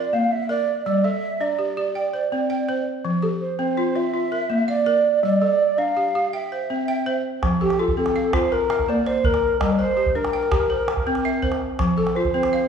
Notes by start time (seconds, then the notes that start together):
Already playing: A#4 D5 F5
0.13 A#3 F5
0.32 E5
0.49 A#4 D5
0.86 G3 D5
1.04 A4 E5
1.41 D4 D5
1.59 G4
1.77 G4
1.95 G5
2.13 C5
2.32 C4
2.50 G5
2.69 C5
3.05 F3
3.22 G4 A4
3.41 C5
3.59 C4 C5
3.77 F4
3.95 F4 E5
4.13 F4
4.32 A#4
4.50 A#3
4.68 D5 F5
4.86 A#4
5.23 G3 D5
5.42 A4
5.78 D4 F5
5.97 G4
6.15 G4
6.33 E5 G5
6.52 C5
6.70 C4
6.88 G5
7.06 C5
7.43 F3, calabash thump, calabash click
7.61 G4 A4
7.70 calabash click
7.79 F4 A4
7.88 calabash thump
7.97 C4 A4
8.06 calabash click
8.16 F5
8.24 calabash click
8.33 F4 C5, calabash thump, calabash click
8.52 A#4
8.70 E5, calabash click
8.79 calabash thump
8.88 A#3 D5, calabash click
9.06 C5 D5, calabash click
9.24 A#4, calabash thump
9.34 calabash click
9.60 G3 A#4, calabash thump, calabash click
9.72 D5
9.79 A#4 C5
9.97 G4
10.06 calabash thump
10.15 D4 A#4
10.25 calabash click
10.33 G5
10.43 calabash click
10.51 G4, calabash thump, calabash click
10.70 C5
10.88 calabash click
10.97 calabash thump
11.06 C4, calabash click
11.15 calabash click
11.24 E5, calabash click
11.42 C5, calabash thump
11.52 calabash click
11.79 F3, calabash thump, calabash click
11.97 A4
12.07 calabash click
12.15 F4 C5
12.25 calabash thump
12.33 C4 C5
12.43 calabash click
12.53 F5
12.61 calabash click